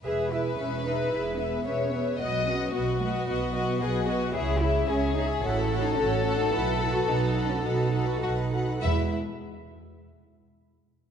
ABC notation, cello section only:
X:1
M:4/4
L:1/16
Q:1/4=110
K:E
V:1 name="Cello section"
G2 E2 C2 D2 E2 B,2 C2 B,2 | B,2 C2 B,2 A,2 B,6 z2 | G2 E2 C2 D2 E3 D C3 D | E3 F D3 C D3 F D4 |
E2 z12 z2 |]